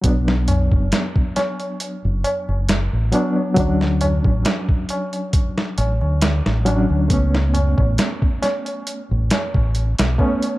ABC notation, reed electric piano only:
X:1
M:4/4
L:1/8
Q:"Swing 16ths" 1/4=68
K:Bm
V:1 name="Reed electric piano"
[F,B,D]6- [F,B,D] [F,B,D] | [F,CD]6- [F,CD] [F,CD] | [A,B,C]6- [A,B,C] [A,B,C] |]